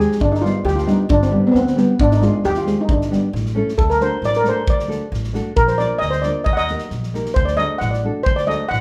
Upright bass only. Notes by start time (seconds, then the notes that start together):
0.20 G1
0.65 D2
1.09 G1
1.54 D2
1.99 G#1
2.45 D#2
2.89 G1
3.33 A1
3.77 D2
4.22 A1
4.67 D2
5.12 A1
5.56 A#1
6.02 D2
6.46 D#2
6.91 A#1
7.36 D2
7.81 A1
8.26 D2
8.71 A1